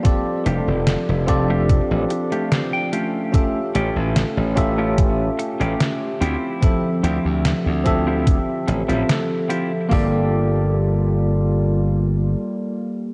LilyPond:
<<
  \new Staff \with { instrumentName = "Tine electric piano" } { \time 4/4 \key g \dorian \tempo 4 = 73 <c' f' g' a' d''>4. <c' f' g' a' d''>2 r8 | <cis' f' g' a' e''>4. <cis' f' g' a' e''>2 r8 | <f c' g' a' e''>4. <f c' g' a' e''>2~ <f c' g' a' e''>8 | <bes f' g' a' d''>1 | }
  \new Staff \with { instrumentName = "Clean electric guitar" } { \time 4/4 \key g \dorian << { r2. c''16 g''8. | r1 | r1 | r1 | } \\ { r8 <a d' f' g'>16 r4 <a d' f' g'>16 r8. <a d' f' g'>16 r8 <a cis' f' g'>8~ | <a cis' f' g'>16 r16 <a cis' f' g'>16 r4 <a cis' f' g'>16 r8. <a cis' f' g'>16 r8 <c' e' f' g'>8~ | <c' e' f' g'>16 r16 <c' e' f' g'>16 r4 <c' e' f' g'>16 r8. <c' e' f' g'>16 r8 <c' e' f' g'>16 r16 | <bes f' g'>1 | } >> }
  \new Staff \with { instrumentName = "Ambient pad" } { \time 4/4 \key g \dorian << { a'2.~ a'8 g'8~ | g'1~ | g'4. a'2~ a'8 | <g bes f'>1 | } \\ { <f d' g'>2.~ <f d' g'>8 <a cis'>8~ | <a cis'>2.~ <a cis'>8 <d f c' e''>8~ | <d f c' e''>1 | r1 | } >> }
  \new Staff \with { instrumentName = "Slap bass" } { \clef bass \time 4/4 \key g \dorian r8 f,,16 f,,16 r16 f,,8. r16 a,,16 r4. | r8 a,,16 a,,16 r16 a,,4 r8 a,,16 r8 d,16 r16 | r8 d,16 d,16 r16 d,8. r8 a,,16 a,,16 r4 | g,,2. r4 | }
  \new DrumStaff \with { instrumentName = "Drums" } \drummode { \time 4/4 <hh bd>8 hh8 <hh sn>8 <hh bd>8 <hh bd>8 hh16 hh16 <hh sn>8 hh8 | <hh bd>8 hh8 <hh sn>8 <hh bd>8 <hh bd>8 hh16 hh16 <hh sn>8 hh8 | <hh bd>8 hh8 <hh sn>8 <hh bd>8 <hh bd>8 hh16 hh16 <hh sn>8 hh8 | <hho bd>4 r4 r4 r4 | }
>>